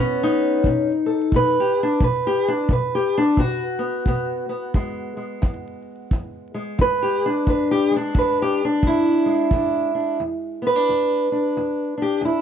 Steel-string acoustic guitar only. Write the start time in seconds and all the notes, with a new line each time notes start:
Already playing: B2 B3
0.00 C#4
0.23 D#4
0.67 B2
1.06 A4
1.34 B2 B4
1.60 G4
1.83 D4
2.01 B2 B4
2.27 G4
2.48 D4
2.71 B2 B4
2.95 G4
3.18 D4
3.39 B2 F#4
3.79 B3
4.07 B2 B3
4.49 B3
4.75 E2 G#3
5.17 G#3
5.42 E2
6.13 E2
6.54 G#3
6.78 E2 B4
7.03 G4
7.26 D4
7.47 E2 B4
7.71 G4
7.91 G#3
7.96 D4
8.14 E2
8.19 B4
8.42 G4
8.65 D4
8.83 E2
8.87 E4
9.26 G#3
9.54 E2 D4
9.95 D4
10.20 E2
10.62 B3
10.67 B4
10.76 D4
10.89 E2
11.32 D4
11.57 E2
11.98 D4
12.02 G4
12.21 E2 E4